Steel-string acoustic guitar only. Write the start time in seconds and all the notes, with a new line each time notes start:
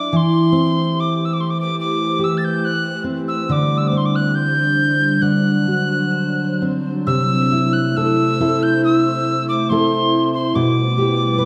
Already playing: F#3 D4 E4
0.13 E3
0.52 C4
2.19 G4
3.04 C4
3.49 D3
3.92 C4
5.22 D3
5.68 F#4
6.62 C4
7.07 C3
7.52 E4
7.97 A4
8.40 C4 E4 A4
9.70 C4 E4 A4
10.55 B2
10.98 G4
11.38 B4